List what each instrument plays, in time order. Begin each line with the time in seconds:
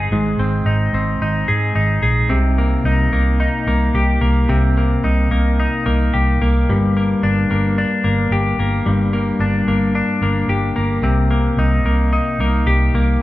Already playing: clean electric guitar G#2 C4 D#4 G#4
0.11 fingered electric bass G#1, clean electric guitar G#2
0.38 fingered electric bass G#1, clean electric guitar C4
0.65 fingered electric bass G#1, clean electric guitar D#4
0.93 fingered electric bass G#1, clean electric guitar C4
1.20 fingered electric bass G#1, clean electric guitar D#4
1.48 fingered electric bass G#2, clean electric guitar G#4
1.75 fingered electric bass G#1, clean electric guitar D#4
2.02 fingered electric bass A#1, clean electric guitar G#4
2.29 fingered electric bass C2, clean electric guitar C3
2.58 clean electric guitar A#3
2.84 fingered electric bass C2, clean electric guitar D#4
3.12 fingered electric bass C2, clean electric guitar A#3
3.40 clean electric guitar D#4
3.67 fingered electric bass C2, clean electric guitar A#3
3.94 fingered electric bass C2, clean electric guitar G4
4.21 fingered electric bass C2, clean electric guitar A#3
4.49 fingered electric bass C2, clean electric guitar C3
4.77 clean electric guitar A#3
5.04 fingered electric bass C2, clean electric guitar D#4
5.31 fingered electric bass C2, clean electric guitar A#3
5.60 clean electric guitar D#4
5.86 fingered electric bass C2, clean electric guitar A#3
6.14 fingered electric bass C2, clean electric guitar G4
6.41 fingered electric bass C2, clean electric guitar A#3
6.69 fingered electric bass G1, clean electric guitar G2
6.97 clean electric guitar A#3
7.23 fingered electric bass G1, clean electric guitar D4
7.50 fingered electric bass G1, clean electric guitar A#3
7.78 clean electric guitar D4
8.04 fingered electric bass G1, clean electric guitar A#3
8.31 fingered electric bass G1, clean electric guitar G4
8.58 fingered electric bass G1, clean electric guitar A#3
8.86 fingered electric bass G1, clean electric guitar G2
9.13 clean electric guitar A#3
9.39 fingered electric bass G1, clean electric guitar D4
9.67 fingered electric bass G1, clean electric guitar A#3
9.95 clean electric guitar D4
10.21 fingered electric bass G1, clean electric guitar A#3
10.48 fingered electric bass G1, clean electric guitar G4
10.76 fingered electric bass G1, clean electric guitar A#3
11.02 fingered electric bass C2, clean electric guitar C3
11.31 clean electric guitar A#3
11.57 fingered electric bass C2, clean electric guitar D#4
11.83 fingered electric bass C2, clean electric guitar A#3
12.13 clean electric guitar D#4
12.39 fingered electric bass C2, clean electric guitar A#3
12.66 fingered electric bass C2, clean electric guitar G4
12.94 fingered electric bass C2, clean electric guitar A#3